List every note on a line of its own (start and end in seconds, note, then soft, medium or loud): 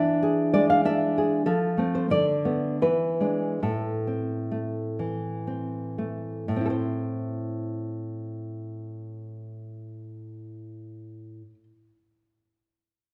0.00 1.42 E3 medium
0.00 0.84 D4 medium
0.00 0.51 E5 medium
0.23 1.16 G#4 medium
0.54 1.46 G#3 medium
0.54 0.69 D5 medium
0.70 0.85 F5 medium
0.85 1.47 D4 medium
0.85 1.15 E5 medium
1.18 1.45 G#4 medium
1.46 2.09 F3 medium
1.46 1.92 A4 medium
1.77 2.08 A3 soft
1.77 2.08 C4 medium
1.95 2.11 C5 medium
2.10 2.80 D3 medium
2.10 2.79 D5 medium
2.45 2.78 A3 soft
2.45 2.78 B3 soft
2.82 3.61 E3 soft
2.82 3.60 B4 medium
3.20 3.59 G#3 soft
3.20 3.60 D4 soft
3.63 6.44 A2 soft
3.63 5.43 A4 medium
4.07 5.46 C4 soft
4.51 5.97 A3 soft
4.99 6.49 E3 soft
5.47 6.49 C4 soft
5.98 6.49 A3 soft
6.48 11.41 A2 medium
6.56 11.50 C4 soft
6.61 11.54 E4 soft
6.66 6.70 A4 soft
6.70 11.63 C5 soft